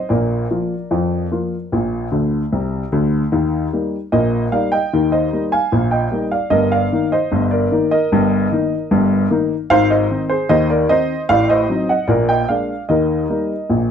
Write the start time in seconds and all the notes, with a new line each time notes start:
Already playing: D#5
0.09 A#1 A#2 A#4 D5
0.51 F3 A#3 F4
0.91 F2 F3
1.31 F3 A#3 F4
1.72 A#1 A#2
2.12 D2 D3
2.52 C2 C3
2.92 D2 D3
3.32 D#2 D#3
3.73 G3 A#3 D#4
4.12 A#1 A#2 A#4 D#5
4.52 G3 A#3 D#4 D5 F5
4.72 D#5 G5
4.93 D#2 D#3
5.12 C5 D#5
5.33 G3 A#3 D#4
5.52 F5 G#5
5.72 A#1 A#2
5.91 D#5 G5
6.11 G3 A#3 D#4
6.32 D5 F5
6.50 G1 G2 A#4 D#5
6.72 D5 F5
6.92 D#3 A#3 D#4
7.12 C5 D#5
7.32 G1 G2
7.51 A#4 D5
7.72 D#3 A#3 D#4
7.91 A#4 D#5
8.12 G1 G2
8.52 D#3 A#3 D#4
8.91 G1 G2
9.30 D#3 A#3 D#4
9.70 G#1 G#2 C5 F5
9.90 C5 D#5
10.10 D#3 C4 D#4
10.30 G#4 C5
10.49 D#2 D#3 C5 D#5
10.70 A#4 D5
10.89 D#3 C4 D#4 C5 D#5
11.29 A1 A2 D5 F5
11.50 C5 D#5
11.69 F#3 C4 D#4
11.89 D#5 F#5
12.08 A#1 A#2 A#4 D5
12.29 D#5 G5
12.49 G#3 A#3 D4 D5 F5
12.89 D#2 D#3 A#4 D#5
13.30 G3 A#3 D#4
13.70 A#1 A#2